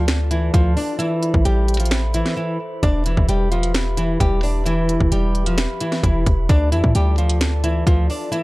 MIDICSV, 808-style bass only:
0, 0, Header, 1, 2, 480
1, 0, Start_track
1, 0, Tempo, 458015
1, 1045, Time_signature, 4, 2, 24, 8
1, 8837, End_track
2, 0, Start_track
2, 0, Title_t, "808-style bass"
2, 0, Program_c, 0, 38
2, 0, Note_on_c, 0, 38, 113
2, 526, Note_off_c, 0, 38, 0
2, 564, Note_on_c, 0, 38, 111
2, 795, Note_off_c, 0, 38, 0
2, 1405, Note_on_c, 0, 33, 106
2, 1520, Note_off_c, 0, 33, 0
2, 1525, Note_on_c, 0, 33, 111
2, 2332, Note_off_c, 0, 33, 0
2, 2965, Note_on_c, 0, 28, 113
2, 3310, Note_off_c, 0, 28, 0
2, 3324, Note_on_c, 0, 28, 105
2, 3437, Note_off_c, 0, 28, 0
2, 3444, Note_on_c, 0, 28, 112
2, 4366, Note_off_c, 0, 28, 0
2, 4404, Note_on_c, 0, 28, 107
2, 5211, Note_off_c, 0, 28, 0
2, 5245, Note_on_c, 0, 28, 102
2, 5360, Note_off_c, 0, 28, 0
2, 5365, Note_on_c, 0, 28, 109
2, 5941, Note_off_c, 0, 28, 0
2, 6324, Note_on_c, 0, 28, 109
2, 6555, Note_off_c, 0, 28, 0
2, 6566, Note_on_c, 0, 28, 106
2, 6796, Note_off_c, 0, 28, 0
2, 6806, Note_on_c, 0, 38, 112
2, 7045, Note_on_c, 0, 41, 102
2, 7061, Note_off_c, 0, 38, 0
2, 7159, Note_off_c, 0, 41, 0
2, 7165, Note_on_c, 0, 45, 108
2, 7280, Note_off_c, 0, 45, 0
2, 7286, Note_on_c, 0, 38, 112
2, 8207, Note_off_c, 0, 38, 0
2, 8245, Note_on_c, 0, 38, 109
2, 8475, Note_off_c, 0, 38, 0
2, 8837, End_track
0, 0, End_of_file